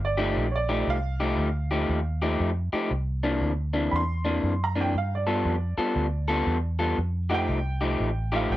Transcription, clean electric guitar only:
0.17 F3 A3 D#4 G4
0.69 F3 A3 D#4 G4
1.20 F3 A3 D#4 G4
1.71 F3 A3 D#4 G4
2.22 F3 A3 D#4 G4
2.73 F3 A3 D#4 G4
3.23 C3 E3 A#3 D4
3.73 C3 E3 A#3 D4
4.25 C3 E3 A#3 D4
4.76 C3 E3 A#3 D4
5.27 G3 B3 F4 A4
5.78 G3 B3 F4 A4
6.28 G3 B3 F4 A4
6.79 G3 B3 F4 A4
7.30 F3 A3 D#4 G4
7.81 F3 A3 D#4 G4
8.32 F3 A3 D#4 G4

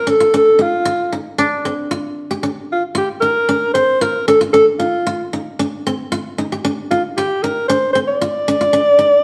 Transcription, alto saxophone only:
Already playing: A#4
0.09 A4
0.36 A4
0.62 F4
2.72 F4
2.98 G4
3.21 A#4
3.74 C5
4.02 A#4
4.28 A4
4.53 A4
4.79 F4
6.91 F4
7.17 G4
7.43 A#4
7.68 C5
7.93 C5
8.08 D5

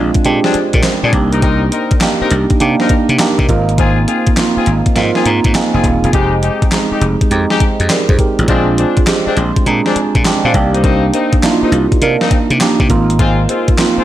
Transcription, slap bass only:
0.25 A#2
0.55 muted slap bass stroke
0.74 A#2
1.04 A#2
1.13 C2
2.21 muted slap bass stroke
2.31 C2
2.61 C3
2.90 muted slap bass stroke
3.09 C3
3.39 C3
3.49 G#1
4.57 muted slap bass stroke
4.67 G#1
4.96 G#2
5.26 G#2
5.45 G#2
5.74 F1
5.84 D#1
6.04 E1
6.13 F1
6.92 muted slap bass stroke
7.01 F1
7.31 F2
7.60 muted slap bass stroke
7.80 F2
8.09 F2
8.39 A1
8.49 A#1
9.27 muted slap bass stroke
9.37 A#1
9.66 A#2
9.96 muted slap bass stroke
10.15 A#2
10.45 A#2
10.54 C2
11.63 muted slap bass stroke
11.72 C2
12.02 C3
12.31 muted slap bass stroke
12.50 C3
12.80 C3
12.90 G#1
13.98 muted slap bass stroke

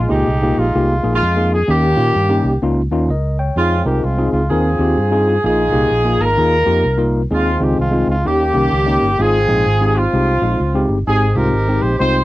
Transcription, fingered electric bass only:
0.10 C#2
0.28 C2
0.57 A#1
0.75 C2
1.04 A#1
1.22 F2
1.68 D#2
1.97 A#2
2.15 G2
2.44 C2
2.62 C#2
2.91 D#2
3.09 C#2
3.56 F2
3.85 C2
4.04 C2
4.33 C#2
4.51 D#2
4.79 D#2
4.97 G2
5.44 A#1
5.72 C2
5.90 A#1
6.19 G#1
6.37 D#2
6.67 F2
6.85 C2
7.31 D#2
7.61 C#2
7.79 C2
8.07 C#2
8.25 D#2
8.55 C2
8.72 C#2
9.01 G1
9.19 G#1
9.47 A#1
9.66 G#1
10.13 C2
10.42 A#1
10.60 C#2
10.89 G1
11.07 G#1
11.35 C2
11.53 G#1
11.82 A#1
12.00 C2

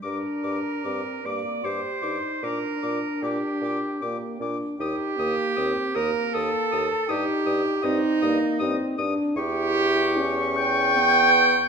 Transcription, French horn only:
0.03 D4
0.85 C4
1.24 A#3
1.65 G4
2.03 D#4
2.43 D4
4.02 A#3
4.41 D4
4.79 D#4
5.18 A#3
5.57 C4
5.95 A#3
7.09 D#4
7.84 C4
8.23 A#3
8.62 C4
8.99 D4
9.36 E4
10.17 C#4
10.96 B3

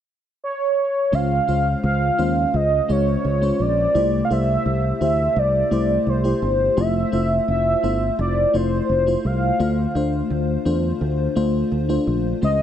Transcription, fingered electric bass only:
1.13 C#2
1.48 C#2
1.84 C#2
2.19 D#2
2.54 C#2
2.89 C#2
3.25 C#2
3.60 A#1
3.95 C2
4.31 C2
4.66 C2
5.01 D2
5.36 C2
5.71 C2
6.07 C2
6.42 G1
6.77 F1
7.13 F1
7.48 F1
7.83 G1
8.19 F1
8.54 F1
8.89 F1
9.25 C2
9.60 D2
9.95 D2
10.30 D2
10.65 E2
11.01 D2
11.36 D2
11.72 D2
12.07 A#1
12.42 C#2

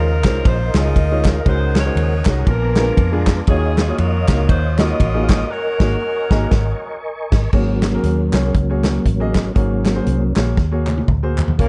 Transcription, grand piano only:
Already playing: C#3
0.25 G#3 C#4 D#4 F4 C5
0.76 G#3 C#4 D#4 F4 G#4
1.11 G#3 C#4 D#4 F4 C#5
1.45 C#3 G#3 C#4 D#4 F#4 A#4
1.85 G#3 C#4 D#4 F#4 C5
2.26 G#3 C#4 D#4 F#4 C#5
2.47 A#2
2.77 G#3 B3 D4 F4 A#4
3.12 G#3 B3 D4 F4 G#4
3.48 D#3 A#3 D#4 F4 F#4 C#5
3.88 A#3 D#4 F4 F#4 C#5
4.28 A#3 D#4 F#4 A#4 F5
4.78 A#3 D#4 F4 F#4 D#5
5.14 A#3 D#4 F4 F#4 G#4
5.81 A#3 D#4 F#4 G#4 C#5
6.31 A#3 D#4 F#4 G#4 D#5 A#5
7.53 G#2 A#3 F#4 G#4 C#5
7.95 A#3 F#4 G#4 A#4
8.34 A#3 F#4 G#4 C#5
8.70 A#3 F#4 G#4 C#5
9.20 A#3 F#4 G#4 D#5
9.55 G#2 A#3 F#4 G#4 C#5
9.94 A#3 F#4 G#4 C5
10.36 A#3 F#4 G#4 C#5
10.71 A#3 F#4 G#4 C#5
11.23 A#3 F#4 G#4 C5
11.59 C#3 A#3 F4 G#4 C#5

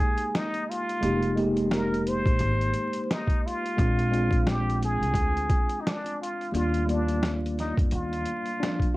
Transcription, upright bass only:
1.03 F1
2.26 A#1
2.40 G#1
3.78 A#1
5.01 C2
5.14 D2
6.54 D#2
7.78 F2
7.92 D#2

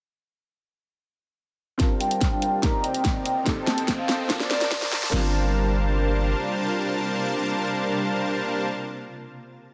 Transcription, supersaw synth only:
1.80 G3 D4 A#4 C5 F5 A5
2.63 C4 C5 D5 D#5 A#5
3.46 C4 C5 D#5 G5 A5
4.30 A#3 A#4 C5 D5 A5
5.13 G3 D4 A#4 C5 F5 A5

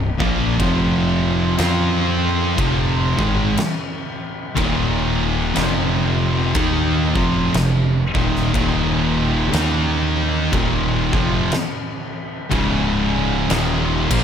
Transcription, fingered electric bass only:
Already playing: C1
0.20 A#1
0.60 F1
1.59 F2
2.58 F1
3.18 G#1
4.57 D#1
5.56 F1
6.55 D#2
7.15 F1
7.54 F1
8.15 D#1
8.54 D#1
9.53 D#2
10.53 D#1
11.13 F1
12.52 C#1
13.50 D#1
14.11 A#1

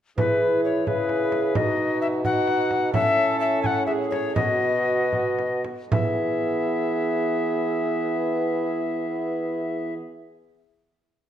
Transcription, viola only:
0.18 G#4
0.89 G#4
1.57 F#4
2.26 F#4
2.94 A4
3.87 G#4
4.36 F#4
5.92 G#4

